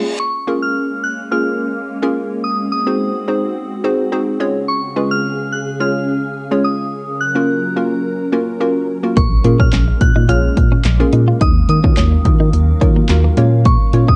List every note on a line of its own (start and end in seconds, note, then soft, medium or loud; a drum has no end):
0.00 0.10 A#3 medium
0.00 0.10 C#4 medium
0.00 0.10 F4 medium
0.00 0.10 G#4 loud
0.00 reverse cymbal medium
0.19 4.36 G#3 medium
0.19 2.41 A#3 medium
0.19 2.41 C#4 medium
0.19 0.64 C#6 loud
0.47 1.02 A#3 medium
0.47 1.02 C#4 medium
0.47 1.02 F4 medium
0.47 1.02 G#4 medium
0.47 1.02 A#4 loud
0.62 1.01 F6 loud
1.04 1.16 F#6 loud
1.31 1.78 A#3 medium
1.31 1.78 C#4 medium
1.31 1.78 F4 medium
1.31 1.78 G#4 medium
1.31 1.78 A#4 medium
1.31 2.47 F6 loud
2.02 2.44 A#3 loud
2.02 2.44 C#4 medium
2.02 2.44 F4 medium
2.02 2.44 G#4 medium
2.02 2.44 A#4 loud
2.44 4.38 C4 medium
2.44 4.38 F#4 medium
2.44 2.56 D#6 loud
2.72 4.36 D#6 medium
2.87 3.14 C4 medium
2.87 3.14 D#4 medium
2.87 3.14 F#4 medium
2.87 3.14 G#4 medium
2.87 3.14 C5 medium
3.28 3.65 C4 medium
3.28 3.65 D#4 medium
3.28 3.65 F#4 medium
3.28 3.65 G#4 medium
3.28 3.65 C5 medium
3.84 4.03 C4 loud
3.84 4.03 D#4 medium
3.84 4.03 F#4 medium
3.84 4.03 G#4 medium
3.84 4.03 C5 loud
4.12 4.39 C4 medium
4.12 4.39 D#4 medium
4.12 4.40 F#4 medium
4.12 4.39 G#4 medium
4.12 4.40 C5 loud
4.40 6.90 C#3 medium
4.40 4.86 G#3 medium
4.40 4.86 C#4 medium
4.40 11.37 C#4 medium
4.40 4.86 F4 medium
4.40 4.86 G#4 medium
4.40 6.90 G#4 medium
4.40 4.86 C#5 loud
4.68 5.12 C#6 loud
4.96 5.51 G#3 medium
4.96 5.51 C#4 medium
4.96 5.51 F4 medium
4.96 5.51 G#4 medium
4.96 5.51 B4 medium
5.11 5.54 F6 loud
5.52 5.65 F#6 loud
5.80 6.26 G#3 medium
5.80 6.26 C#4 medium
5.80 6.26 F4 medium
5.80 6.27 G#4 medium
5.80 6.27 C#5 medium
5.80 6.67 F6 loud
6.51 6.92 G#3 medium
6.51 6.92 C#4 medium
6.51 6.93 F4 medium
6.51 6.93 G#4 medium
6.51 6.93 C#5 medium
6.64 7.22 D#6 loud
6.92 9.15 F#3 medium
6.92 9.15 A#4 medium
7.21 8.85 F#6 medium
7.35 7.63 A#3 medium
7.35 7.63 C#4 medium
7.35 7.63 F4 medium
7.35 7.63 F#4 medium
7.35 7.63 A#4 medium
7.76 8.13 A#3 medium
7.76 8.13 C#4 medium
7.76 8.14 F4 medium
7.76 8.14 F#4 medium
7.76 8.14 A#4 medium
8.32 8.51 A#3 loud
8.32 8.51 C#4 medium
8.32 8.51 F4 medium
8.32 8.51 F#4 medium
8.32 8.52 A#4 loud
8.60 8.88 A#3 medium
8.60 8.88 C#4 medium
8.60 8.88 F4 medium
8.60 8.88 F#4 medium
8.60 8.88 A#4 loud
9.03 9.17 A#3 medium
9.03 9.17 C#4 medium
9.03 9.17 F4 medium
9.03 9.17 F#4 medium
9.03 9.17 A#4 medium
9.16 9.35 A#1 loud
9.16 11.39 G#3 medium
9.16 14.16 A#3 medium
9.16 9.27 A#3 medium
9.16 9.61 C#6 loud
9.16 kick loud
9.16 closed hi-hat medium
9.44 9.54 A#2 loud
9.44 9.99 A#3 medium
9.44 9.99 C#4 medium
9.44 9.99 F4 medium
9.44 10.00 G#4 medium
9.44 10.00 A#4 medium
9.44 muted clean electric guitar stroke soft
9.44 closed hi-hat medium
9.60 9.68 A#2 loud
9.60 9.69 C#4 medium
9.60 10.02 F6 loud
9.60 kick loud
9.73 9.91 A#1 loud
9.73 9.83 C#4 medium
9.73 snare medium
9.73 clap loud
9.73 closed hi-hat loud
9.88 muted clean electric guitar stroke soft
10.01 10.11 A#2 loud
10.01 10.27 F#6 loud
10.01 kick loud
10.01 closed hi-hat medium
10.16 10.24 A#2 loud
10.16 10.25 D#4 medium
10.28 10.47 A#1 loud
10.28 10.75 A#3 medium
10.28 10.75 C#4 medium
10.28 10.75 F4 medium
10.28 10.39 F4 medium
10.28 10.75 G#4 medium
10.28 10.75 C#5 medium
10.28 11.45 F6 loud
10.28 closed hi-hat medium
10.57 10.75 A#2 loud
10.57 muted clean electric guitar stroke soft
10.57 kick loud
10.57 closed hi-hat medium
10.72 10.81 C#4 medium
10.85 11.03 A#1 loud
10.85 muted clean electric guitar stroke soft
10.85 snare medium
10.85 clap loud
10.85 closed hi-hat medium
11.00 11.41 A#3 loud
11.00 11.41 C#4 medium
11.00 11.41 F4 medium
11.00 11.41 G#4 medium
11.00 11.41 A#4 loud
11.13 11.31 A#2 loud
11.13 11.23 D#4 medium
11.13 closed hi-hat medium
11.28 11.37 F4 medium
11.41 11.59 D#2 loud
11.41 13.35 D#3 medium
11.41 13.35 F#3 medium
11.41 11.51 D#4 loud
11.41 14.16 F5 medium
11.41 11.68 D#6 loud
11.41 kick loud
11.41 closed hi-hat medium
11.69 11.79 D#3 loud
11.69 13.33 D#6 medium
11.69 muted clean electric guitar stroke soft
11.69 closed hi-hat medium
11.84 11.93 D#3 medium
11.84 12.11 A#3 medium
11.84 11.93 C#4 medium
11.84 12.11 D#4 medium
11.84 12.11 F4 medium
11.84 12.11 F#4 medium
11.84 12.11 A#4 medium
11.84 kick loud
11.97 12.15 D#2 loud
11.97 12.07 C#4 loud
11.97 snare medium
11.97 clap loud
11.97 closed hi-hat loud
12.12 muted clean electric guitar stroke soft
12.25 12.35 D#3 loud
12.25 12.62 A#3 medium
12.25 12.62 D#4 medium
12.25 12.62 F4 medium
12.25 12.62 F#4 medium
12.25 12.62 A#4 medium
12.25 kick loud
12.25 closed hi-hat medium
12.40 12.49 D#3 loud
12.40 12.49 D#4 medium
12.53 12.71 D#2 loud
12.53 muted clean electric guitar stroke soft
12.53 closed hi-hat medium
12.81 13.00 D#3 loud
12.81 13.00 A#3 loud
12.81 12.91 C#4 medium
12.81 13.00 D#4 medium
12.81 13.00 F4 medium
12.81 13.00 F#4 medium
12.81 13.00 A#4 loud
12.81 kick loud
12.81 closed hi-hat medium
12.96 13.05 A#3 medium
13.09 13.28 D#2 loud
13.09 13.36 A#3 medium
13.09 13.37 D#4 medium
13.09 13.36 F4 medium
13.09 13.37 F#4 medium
13.09 13.36 A#4 loud
13.09 muted clean electric guitar stroke soft
13.09 snare medium
13.09 clap loud
13.09 closed hi-hat medium
13.24 13.33 A#3 medium
13.37 13.74 A#2 loud
13.37 13.48 G#3 medium
13.37 13.83 A#3 loud
13.37 13.83 C#4 medium
13.37 14.16 C#4 medium
13.37 13.83 F4 medium
13.37 13.83 A#4 medium
13.37 13.83 C#5 loud
13.37 closed hi-hat medium
13.65 13.76 A#3 medium
13.65 14.10 C#6 medium
13.65 kick loud
13.65 closed hi-hat medium
13.93 14.03 A#2 loud
13.93 14.16 A#3 medium
13.93 14.16 C#4 medium
13.93 14.16 F4 medium
13.93 14.16 A#4 medium
13.93 14.16 C#5 medium
13.93 muted clean electric guitar stroke soft
13.93 closed hi-hat medium
14.08 14.16 A#2 medium
14.08 14.16 C#4 medium
14.08 14.16 D#6 loud
14.08 kick loud